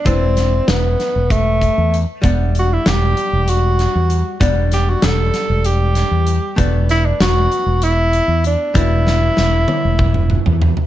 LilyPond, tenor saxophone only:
\new Staff \with { instrumentName = "Tenor saxophone" } { \time 7/8 \key e \minor \tempo 4 = 97 c'4 b4 a4 r8 | r8 fis'16 e'16 g'4 fis'4. | r8 g'16 fis'16 a'4 g'4. | r8 e'16 d'16 fis'4 e'4 d'8 |
e'2. r8 | }